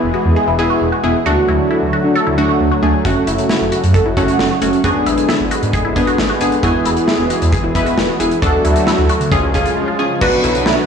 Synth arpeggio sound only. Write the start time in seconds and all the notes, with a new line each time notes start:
0.14 F#4
0.36 G#4
0.47 E4
0.70 F#4
0.92 F#4
1.26 F#4
1.48 E4
1.71 E4
1.93 F#4
2.15 A4
2.27 E4
2.49 F#4
2.71 F#4
3.05 F#4
3.27 E4
3.50 E4
3.72 F#4
3.95 A4
4.06 E4
4.28 F#4
4.51 F#4
4.84 F#4
5.06 E4
5.29 E4
5.51 F#4
5.74 G#4
5.85 E4
6.07 F#4
6.30 F#4
6.63 F#4
6.86 E4
7.08 E4
7.30 F#4
7.53 G#4
7.64 E4
7.86 F#4
8.09 F#4
8.42 F#4
8.65 E4
8.87 E4
9.09 F#4
9.32 G#4
9.43 C#4
9.65 F4
9.88 F4
10.21 F#4
10.44 E4
10.66 E4